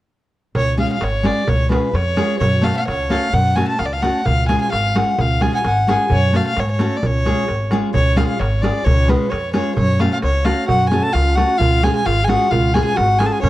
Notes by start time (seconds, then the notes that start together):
0.55 C#2 C#5, darbuka dum
0.68 darbuka tek
0.77 G#3 C#4 F4 G#4 F5
0.93 F5
1.01 G#1 C#5, darbuka tek
1.23 G#3 C#4 F4 G#4 D5, darbuka tek
1.37 darbuka tek
1.48 C#2 C#5, darbuka dum
1.60 darbuka tek
1.69 G#3 C#4 F4 G#4 B4, darbuka tek
1.93 F2 C#5, darbuka tek
2.16 G#3 C#4 F4 G#4, darbuka tek
2.30 darbuka tek
2.40 F#2 C#5, darbuka dum
2.54 darbuka tek
2.62 A3 C#4 F#4 A4 F5, darbuka tek
2.74 F5 F#5
2.88 C#2 C#5, darbuka tek
3.10 A3 C#4 F#4 A4 F5, darbuka tek
3.23 darbuka tek
3.33 F#2 F#5, darbuka dum
3.56 A3 C#4 F#4 A4 G#5, darbuka tek
3.68 A5, darbuka tek
3.79 C#2 F5, darbuka tek
3.86 D5
3.93 F5
4.02 A3 C#4 F#4 A4 F#5, darbuka tek
4.25 C#2 F5, darbuka dum
4.39 darbuka tek
4.48 G#3 C#4 F4 G#4 G#5, darbuka tek
4.61 G#5
4.72 G#1 F5, darbuka tek
4.95 G#3 C#4 F4 G#4 F#5, darbuka tek
5.08 darbuka tek
5.18 C#2 F5, darbuka dum
5.31 darbuka tek
5.41 G#3 C#4 F4 G#4 G#5, darbuka tek
5.54 F#5 G#5
5.59 G#5
5.64 G#1 F#5, darbuka tek
5.87 G#3 C#4 F4 G#4 G#5, darbuka tek
5.99 darbuka tek
6.10 F#2 C#5, darbuka dum
6.33 A3 C#4 F#4 A4 F5, darbuka tek
6.48 F5
6.57 G#2 C#5, darbuka tek
6.72 C#5
6.79 A3 C#4 F#4 A4, darbuka tek
6.97 D5
7.03 C#2 C#5, darbuka dum
7.14 darbuka tek
7.25 G#3 C#4 F4 G#4, darbuka tek
7.48 G#1, darbuka tek
7.61 darbuka tek
7.71 G#3 C#4 F4 G#4, darbuka tek
7.83 darbuka tek
7.94 C#2 C#5, darbuka dum
8.06 darbuka tek
8.16 G#3 C#4 F4 G#4 F5, darbuka tek
8.28 F5
8.40 G#1 C#5, darbuka tek
8.62 G#3 C#4 F4 G#4 D5, darbuka tek
8.85 C#2 C#5, darbuka dum
8.99 darbuka tek
9.08 G#3 C#4 F4 G#4 B4, darbuka tek
9.30 F2 C#5, darbuka tek
9.53 G#3 C#4 F4 G#4 C#5, darbuka tek
9.67 darbuka tek
9.76 F#2 C#5, darbuka dum
9.90 darbuka tek
9.99 A3 C#4 F#4 A4 F5, darbuka tek
10.13 F5
10.22 C#2 C#5, darbuka tek
10.44 A3 C#4 F#4 A4 F5, darbuka tek
10.67 F#2 F#4 F#5, darbuka dum
10.81 darbuka tek
10.89 A3 C#4 F#4 G#4 A4 G#5, darbuka tek
11.02 A4 A5
11.13 C#2 F4 F5, darbuka tek
11.34 A3 C#4 F#4 F#5, darbuka tek
11.39 A4
11.50 darbuka tek
11.58 C#2 F4 F5, darbuka dum
11.73 darbuka tek
11.83 G#3 C#4 F4 G#4 G#5, darbuka tek
11.92 G#4 G#5
12.05 G#1 F4 F5, darbuka tek
12.23 G#4 G#5
12.28 G#3 C#4 F4 F#4 G#4 F#5, darbuka tek
12.41 darbuka tek
12.50 C#2 F4 F5, darbuka dum
12.64 darbuka tek
12.74 G#3 C#4 F4 G#4 G#5, darbuka tek
12.85 G#4 G#5
12.94 G#1 F#4 F#5, darbuka tek
13.19 G#3 C#4 F4 G#4 G#5, darbuka tek
13.26 A4 A5
13.32 G#4 G#5, darbuka tek
13.42 F#2 C#4 C#5, darbuka dum